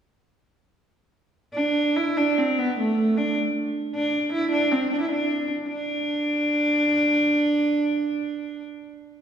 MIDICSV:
0, 0, Header, 1, 2, 480
1, 0, Start_track
1, 0, Tempo, 405954
1, 1100, Time_signature, 6, 3, 24, 8
1, 3494, Tempo, 392670
1, 5894, Tempo, 374532
1, 8294, Tempo, 354820
1, 11573, End_track
2, 0, Start_track
2, 0, Title_t, "Viola da gamba"
2, 0, Program_c, 0, 42
2, 1814, Note_on_c, 0, 62, 82
2, 2321, Note_on_c, 0, 64, 82
2, 2339, Note_off_c, 0, 62, 0
2, 2563, Note_on_c, 0, 62, 83
2, 2581, Note_off_c, 0, 64, 0
2, 2814, Note_on_c, 0, 60, 79
2, 2831, Note_off_c, 0, 62, 0
2, 3052, Note_on_c, 0, 59, 83
2, 3070, Note_off_c, 0, 60, 0
2, 3273, Note_off_c, 0, 59, 0
2, 3298, Note_on_c, 0, 57, 67
2, 3760, Note_on_c, 0, 62, 76
2, 3778, Note_off_c, 0, 57, 0
2, 3992, Note_off_c, 0, 62, 0
2, 4711, Note_on_c, 0, 62, 82
2, 5153, Note_off_c, 0, 62, 0
2, 5168, Note_on_c, 0, 64, 88
2, 5389, Note_off_c, 0, 64, 0
2, 5397, Note_on_c, 0, 62, 92
2, 5644, Note_on_c, 0, 60, 83
2, 5663, Note_off_c, 0, 62, 0
2, 5886, Note_off_c, 0, 60, 0
2, 5901, Note_on_c, 0, 62, 76
2, 5999, Note_off_c, 0, 62, 0
2, 6007, Note_on_c, 0, 64, 73
2, 6125, Note_off_c, 0, 64, 0
2, 6140, Note_on_c, 0, 62, 73
2, 6649, Note_off_c, 0, 62, 0
2, 6866, Note_on_c, 0, 62, 88
2, 10776, Note_off_c, 0, 62, 0
2, 11573, End_track
0, 0, End_of_file